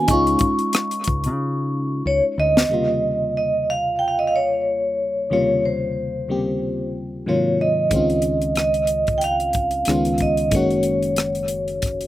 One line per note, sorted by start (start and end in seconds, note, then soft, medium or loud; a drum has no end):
0.00 0.11 D#3 soft
0.00 0.10 F#4 soft
0.00 0.10 G#5 medium
0.08 0.35 C#2 medium
0.08 2.66 G#3 medium
0.08 2.65 D#4 medium
0.08 2.01 C#6 medium
0.08 kick loud
0.08 closed hi-hat medium
0.12 2.67 C#4 medium
0.12 2.68 F4 medium
0.27 closed hi-hat soft
0.39 kick medium
0.39 closed hi-hat medium
0.59 closed hi-hat soft
0.73 cross-stick loud
0.73 closed hi-hat medium
0.91 closed hi-hat soft
1.04 1.27 C#2 medium
1.04 kick medium
1.04 closed hi-hat medium
1.24 2.01 C#3 medium
1.24 closed hi-hat soft
2.06 2.20 C#2 medium
2.06 2.21 C#5 medium
2.38 2.63 D2 medium
2.38 3.32 D#5 medium
2.57 snare medium
2.68 5.26 D#2 soft
2.68 5.26 C#3 soft
2.68 5.27 G3 soft
2.68 5.27 A#3 soft
2.72 5.28 C3 soft
2.72 5.28 F4 medium
3.37 3.66 D#5 medium
3.70 3.99 F5 medium
3.99 4.07 G5 medium
4.08 4.17 F5 medium
4.19 4.26 D#5 medium
4.27 4.34 F5 medium
4.36 5.32 C#5 medium
5.30 6.27 D#2 medium
5.30 6.29 C3 soft
5.30 6.28 C#3 soft
5.30 6.29 G3 soft
5.30 6.29 A#3 soft
5.30 6.30 F4 medium
5.30 5.62 C#5 medium
5.65 6.91 C5 medium
6.28 7.26 D#2 soft
6.28 7.26 C#3 soft
6.28 7.27 G3 soft
6.28 7.27 A#3 soft
6.28 7.27 C4 soft
6.28 7.28 G4 soft
7.26 7.91 G#2 soft
7.26 7.92 C3 soft
7.26 7.89 D#3 soft
7.26 7.92 F#3 soft
7.26 7.92 A#3 soft
7.26 7.93 F4 medium
7.26 7.61 C#5 medium
7.61 8.54 D#5 medium
7.90 9.83 C#2 medium
7.90 9.82 D#3 medium
7.90 9.83 G#3 soft
7.90 9.84 C4 soft
7.90 kick medium
7.90 closed hi-hat medium
7.94 9.84 C#4 soft
7.94 9.85 F4 medium
8.10 closed hi-hat soft
8.22 closed hi-hat medium
8.42 closed hi-hat soft
8.55 9.19 D#5 medium
8.55 cross-stick medium
8.55 closed hi-hat medium
8.74 closed hi-hat soft
8.87 closed hi-hat medium
9.07 kick medium
9.07 closed hi-hat soft
9.18 9.23 G5 medium
9.18 closed hi-hat medium
9.24 10.24 F5 medium
9.40 closed hi-hat soft
9.53 kick medium
9.53 closed hi-hat medium
9.71 closed hi-hat soft
9.85 10.49 C#2 medium
9.85 10.49 D#3 soft
9.85 10.51 G#3 soft
9.85 10.53 B3 soft
9.85 10.53 C#4 soft
9.85 cross-stick medium
9.85 closed hi-hat medium
9.90 10.54 F4 medium
10.05 closed hi-hat soft
10.18 kick medium
10.18 closed hi-hat soft
10.22 10.54 D#5 medium
10.37 closed hi-hat soft
10.51 12.07 F#1 medium
10.51 12.07 D#3 medium
10.51 12.07 G#3 soft
10.51 12.07 A#3 soft
10.51 kick medium
10.51 closed hi-hat medium
10.55 12.07 C#4 soft
10.55 12.07 F#4 medium
10.55 12.07 C#5 medium
10.71 closed hi-hat soft
10.83 closed hi-hat medium
11.03 closed hi-hat soft
11.16 cross-stick loud
11.16 closed hi-hat medium
11.35 closed hi-hat soft
11.48 closed hi-hat medium
11.68 closed hi-hat soft
11.82 kick medium
11.82 closed hi-hat medium
11.86 cross-stick soft
12.01 closed hi-hat soft